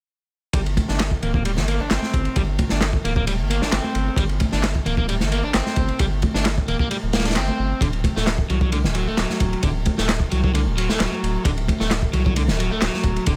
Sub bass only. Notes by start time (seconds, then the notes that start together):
0.53 G1
0.89 G1
1.22 D1
1.57 G1
1.80 G1
1.91 G1
2.14 G1
2.36 G1
2.71 G1
3.04 D1
3.39 G1
3.62 G1
3.72 G1
3.95 G1
4.17 G1
4.53 G1
4.86 D1
5.21 G1
5.43 G1
5.54 G1
5.77 G1
6.00 G1
6.35 G1
6.68 D1
7.03 D1
7.36 G1
7.59 G1
7.81 D1
8.16 D1
8.50 C2
8.85 D1
9.07 D1
9.18 D1
9.40 D1
9.63 D1
9.99 D1
10.32 C2
10.67 D1
10.89 D1
11.00 D1
11.23 D1
11.45 D1
11.80 D1
12.14 C2
12.48 D1
12.71 D1
12.82 D1
13.04 D1
13.27 D1